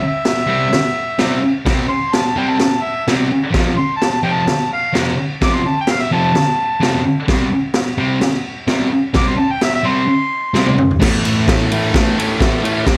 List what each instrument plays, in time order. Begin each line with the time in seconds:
0.07 harmonica E5
0.25 snare, crash
0.47 distorted electric guitar C3 G3 C4
0.73 snare, crash
1.18 distorted electric guitar C3 G3 C4, snare, crash
1.65 distorted electric guitar C3 G3 C4, kick, snare, crash
1.89 harmonica C6
2.13 harmonica A5, snare, crash
2.27 harmonica A5
2.36 distorted electric guitar C3 G3 C4, harmonica G5
2.50 harmonica A5
2.60 snare, crash
2.83 harmonica E5
3.07 distorted electric guitar C3 G3 C4, snare, crash
3.52 distorted electric guitar F2 C3 F3, kick, snare, crash
3.77 harmonica C6
3.96 harmonica A5
4.02 snare, crash
4.11 harmonica A5
4.23 distorted electric guitar F2 C3 F3, harmonica G5
4.32 harmonica A5
4.48 snare, crash
4.73 harmonica F5
4.93 distorted electric guitar F2 C3 F3, snare, crash
5.41 distorted electric guitar F2 C3 F3, harmonica D6, kick, snare, crash
5.55 harmonica C6
5.67 harmonica A5
5.81 harmonica G5
5.87 snare, crash
5.92 harmonica F5
6.01 harmonica E5
6.11 distorted electric guitar F2 C3 F3, harmonica A5
6.35 snare, crash
6.80 distorted electric guitar F2 C3 F3, snare, crash
7.28 distorted electric guitar C3 G3 C4, kick, snare, crash
7.74 snare, crash
7.98 distorted electric guitar C3 G3 C4
8.21 snare, crash
8.67 distorted electric guitar C3 G3 C4, snare, crash
9.13 distorted electric guitar C3 G3 C4, harmonica D6, kick, snare, crash
9.28 harmonica C6
9.39 harmonica A5
9.51 harmonica G5
9.61 harmonica E5, snare, crash
9.75 harmonica E5
9.84 distorted electric guitar C3 G3 C4, harmonica C6
10.54 distorted electric guitar C3 G3 C4, snare
10.67 high tom
10.78 mid tom
10.91 floor tom
10.99 distorted electric guitar A2 E3 A3, kick, snare, crash
11.23 distorted electric guitar A2 E3 A3, ride
11.47 distorted electric guitar A2 E3 A3, kick, snare, ride
11.71 distorted electric guitar A2 E3 A3, ride
11.93 distorted electric guitar A2 E3 A3, kick, snare, ride
12.18 distorted electric guitar A2 E3 A3, ride
12.39 distorted electric guitar A2 E3 A3, kick, snare, ride
12.62 distorted electric guitar A2 E3 A3, ride
12.86 distorted electric guitar C3 G3 C4, kick, snare, ride